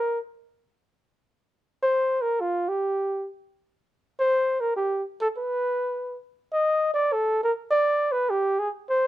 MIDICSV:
0, 0, Header, 1, 2, 480
1, 0, Start_track
1, 0, Key_signature, -3, "minor"
1, 0, Tempo, 500000
1, 8709, End_track
2, 0, Start_track
2, 0, Title_t, "Flugelhorn"
2, 0, Program_c, 0, 56
2, 0, Note_on_c, 0, 70, 81
2, 186, Note_off_c, 0, 70, 0
2, 1751, Note_on_c, 0, 72, 86
2, 2130, Note_on_c, 0, 70, 85
2, 2144, Note_off_c, 0, 72, 0
2, 2311, Note_on_c, 0, 65, 76
2, 2326, Note_off_c, 0, 70, 0
2, 2576, Note_on_c, 0, 67, 77
2, 2590, Note_off_c, 0, 65, 0
2, 3144, Note_off_c, 0, 67, 0
2, 4026, Note_on_c, 0, 72, 99
2, 4419, Note_on_c, 0, 70, 86
2, 4433, Note_off_c, 0, 72, 0
2, 4568, Note_off_c, 0, 70, 0
2, 4574, Note_on_c, 0, 67, 75
2, 4829, Note_off_c, 0, 67, 0
2, 4998, Note_on_c, 0, 69, 85
2, 5064, Note_off_c, 0, 69, 0
2, 5155, Note_on_c, 0, 71, 85
2, 5945, Note_off_c, 0, 71, 0
2, 6265, Note_on_c, 0, 75, 92
2, 6624, Note_off_c, 0, 75, 0
2, 6658, Note_on_c, 0, 74, 91
2, 6841, Note_on_c, 0, 69, 81
2, 6856, Note_off_c, 0, 74, 0
2, 7108, Note_off_c, 0, 69, 0
2, 7137, Note_on_c, 0, 70, 87
2, 7221, Note_off_c, 0, 70, 0
2, 7398, Note_on_c, 0, 74, 92
2, 7793, Note_on_c, 0, 71, 84
2, 7808, Note_off_c, 0, 74, 0
2, 7968, Note_on_c, 0, 67, 85
2, 7982, Note_off_c, 0, 71, 0
2, 8249, Note_on_c, 0, 68, 76
2, 8263, Note_off_c, 0, 67, 0
2, 8347, Note_off_c, 0, 68, 0
2, 8538, Note_on_c, 0, 72, 89
2, 8709, Note_off_c, 0, 72, 0
2, 8709, End_track
0, 0, End_of_file